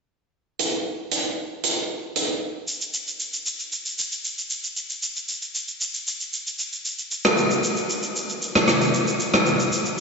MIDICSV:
0, 0, Header, 1, 2, 480
1, 0, Start_track
1, 0, Tempo, 521739
1, 545, Time_signature, 4, 2, 24, 8
1, 9201, End_track
2, 0, Start_track
2, 0, Title_t, "Drums"
2, 545, Note_on_c, 9, 42, 55
2, 637, Note_off_c, 9, 42, 0
2, 1025, Note_on_c, 9, 42, 56
2, 1117, Note_off_c, 9, 42, 0
2, 1505, Note_on_c, 9, 42, 58
2, 1597, Note_off_c, 9, 42, 0
2, 1985, Note_on_c, 9, 42, 56
2, 2077, Note_off_c, 9, 42, 0
2, 2465, Note_on_c, 9, 82, 69
2, 2557, Note_off_c, 9, 82, 0
2, 2588, Note_on_c, 9, 82, 50
2, 2680, Note_off_c, 9, 82, 0
2, 2704, Note_on_c, 9, 82, 82
2, 2796, Note_off_c, 9, 82, 0
2, 2829, Note_on_c, 9, 82, 56
2, 2921, Note_off_c, 9, 82, 0
2, 2942, Note_on_c, 9, 82, 61
2, 3034, Note_off_c, 9, 82, 0
2, 3068, Note_on_c, 9, 82, 55
2, 3160, Note_off_c, 9, 82, 0
2, 3186, Note_on_c, 9, 82, 87
2, 3278, Note_off_c, 9, 82, 0
2, 3306, Note_on_c, 9, 82, 51
2, 3398, Note_off_c, 9, 82, 0
2, 3426, Note_on_c, 9, 82, 84
2, 3518, Note_off_c, 9, 82, 0
2, 3547, Note_on_c, 9, 82, 58
2, 3639, Note_off_c, 9, 82, 0
2, 3668, Note_on_c, 9, 82, 96
2, 3760, Note_off_c, 9, 82, 0
2, 3790, Note_on_c, 9, 82, 50
2, 3882, Note_off_c, 9, 82, 0
2, 3907, Note_on_c, 9, 82, 70
2, 3999, Note_off_c, 9, 82, 0
2, 4032, Note_on_c, 9, 82, 46
2, 4124, Note_off_c, 9, 82, 0
2, 4142, Note_on_c, 9, 82, 80
2, 4234, Note_off_c, 9, 82, 0
2, 4269, Note_on_c, 9, 82, 52
2, 4361, Note_off_c, 9, 82, 0
2, 4385, Note_on_c, 9, 82, 69
2, 4477, Note_off_c, 9, 82, 0
2, 4508, Note_on_c, 9, 82, 48
2, 4600, Note_off_c, 9, 82, 0
2, 4624, Note_on_c, 9, 82, 80
2, 4716, Note_off_c, 9, 82, 0
2, 4749, Note_on_c, 9, 82, 57
2, 4841, Note_off_c, 9, 82, 0
2, 4862, Note_on_c, 9, 82, 63
2, 4954, Note_off_c, 9, 82, 0
2, 4988, Note_on_c, 9, 82, 55
2, 5080, Note_off_c, 9, 82, 0
2, 5105, Note_on_c, 9, 82, 86
2, 5197, Note_off_c, 9, 82, 0
2, 5227, Note_on_c, 9, 82, 49
2, 5319, Note_off_c, 9, 82, 0
2, 5345, Note_on_c, 9, 82, 81
2, 5437, Note_off_c, 9, 82, 0
2, 5467, Note_on_c, 9, 82, 59
2, 5559, Note_off_c, 9, 82, 0
2, 5587, Note_on_c, 9, 82, 96
2, 5679, Note_off_c, 9, 82, 0
2, 5709, Note_on_c, 9, 82, 49
2, 5801, Note_off_c, 9, 82, 0
2, 5827, Note_on_c, 9, 82, 72
2, 5919, Note_off_c, 9, 82, 0
2, 5952, Note_on_c, 9, 82, 49
2, 6044, Note_off_c, 9, 82, 0
2, 6062, Note_on_c, 9, 82, 82
2, 6154, Note_off_c, 9, 82, 0
2, 6189, Note_on_c, 9, 82, 49
2, 6281, Note_off_c, 9, 82, 0
2, 6305, Note_on_c, 9, 82, 72
2, 6397, Note_off_c, 9, 82, 0
2, 6428, Note_on_c, 9, 82, 49
2, 6520, Note_off_c, 9, 82, 0
2, 6544, Note_on_c, 9, 82, 81
2, 6636, Note_off_c, 9, 82, 0
2, 6669, Note_on_c, 9, 37, 88
2, 6669, Note_on_c, 9, 82, 53
2, 6761, Note_off_c, 9, 37, 0
2, 6761, Note_off_c, 9, 82, 0
2, 6782, Note_on_c, 9, 82, 61
2, 6874, Note_off_c, 9, 82, 0
2, 6908, Note_on_c, 9, 82, 55
2, 7000, Note_off_c, 9, 82, 0
2, 7026, Note_on_c, 9, 82, 88
2, 7118, Note_off_c, 9, 82, 0
2, 7147, Note_on_c, 9, 82, 49
2, 7239, Note_off_c, 9, 82, 0
2, 7266, Note_on_c, 9, 82, 85
2, 7358, Note_off_c, 9, 82, 0
2, 7387, Note_on_c, 9, 82, 57
2, 7479, Note_off_c, 9, 82, 0
2, 7508, Note_on_c, 9, 82, 96
2, 7600, Note_off_c, 9, 82, 0
2, 7629, Note_on_c, 9, 82, 50
2, 7721, Note_off_c, 9, 82, 0
2, 7747, Note_on_c, 9, 82, 68
2, 7839, Note_off_c, 9, 82, 0
2, 7870, Note_on_c, 9, 37, 86
2, 7873, Note_on_c, 9, 82, 47
2, 7962, Note_off_c, 9, 37, 0
2, 7965, Note_off_c, 9, 82, 0
2, 7982, Note_on_c, 9, 37, 78
2, 7982, Note_on_c, 9, 82, 84
2, 8074, Note_off_c, 9, 37, 0
2, 8074, Note_off_c, 9, 82, 0
2, 8109, Note_on_c, 9, 82, 50
2, 8201, Note_off_c, 9, 82, 0
2, 8225, Note_on_c, 9, 82, 67
2, 8317, Note_off_c, 9, 82, 0
2, 8348, Note_on_c, 9, 82, 51
2, 8440, Note_off_c, 9, 82, 0
2, 8464, Note_on_c, 9, 82, 84
2, 8556, Note_off_c, 9, 82, 0
2, 8589, Note_on_c, 9, 82, 58
2, 8590, Note_on_c, 9, 37, 87
2, 8681, Note_off_c, 9, 82, 0
2, 8682, Note_off_c, 9, 37, 0
2, 8703, Note_on_c, 9, 82, 63
2, 8795, Note_off_c, 9, 82, 0
2, 8829, Note_on_c, 9, 82, 55
2, 8921, Note_off_c, 9, 82, 0
2, 8946, Note_on_c, 9, 82, 85
2, 9038, Note_off_c, 9, 82, 0
2, 9067, Note_on_c, 9, 82, 46
2, 9159, Note_off_c, 9, 82, 0
2, 9201, End_track
0, 0, End_of_file